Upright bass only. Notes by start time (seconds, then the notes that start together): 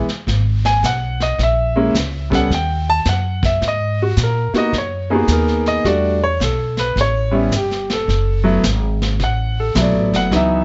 0.08 muted upright bass stroke
0.27 G#1
0.83 B1
1.38 A#1
1.95 C#2
2.50 D#2
3.05 F#2
3.61 G#2
4.17 A#2
4.53 muted upright bass stroke
4.73 F#2
5.28 D#2
5.84 E2
6.40 B1
6.96 A1
7.51 G1
8.08 F#1
8.64 G#1
9.20 A1
9.75 B1
9.94 A1
10.12 F#1
10.31 C#2